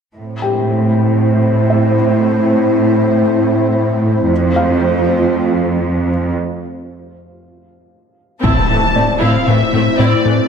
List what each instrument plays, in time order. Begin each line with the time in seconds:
0.16 cello section A2, analog synth pad A3 C4 E4 C5
0.42 felt piano G4 G5
1.70 felt piano E5
4.30 cello section F2, analog synth pad A3 C4 F4 C5
4.56 felt piano F5
8.43 analog synth bass A2, cello section A2, analog synth pad A3 C4 E4 C5, viola section C4 E4, violin section A5, taiko, impact
8.69 cello section A2, viola section E3 A3, analog synth bass A3
8.95 cello section A2, viola section A3 C4, analog synth bass A3, felt piano D5
9.21 cello section A2, analog synth bass A2, viola section C4 E4, violin section F5
9.47 cello section A2, analog synth bass A2, viola section E3 A3, violin section E5
9.73 cello section A2, analog synth bass A2, viola section A3 C4
9.99 cello section A2, analog synth bass A2, viola section C4 E4, violin section D5
10.25 cello section A2, analog synth bass A2, viola section E3 A3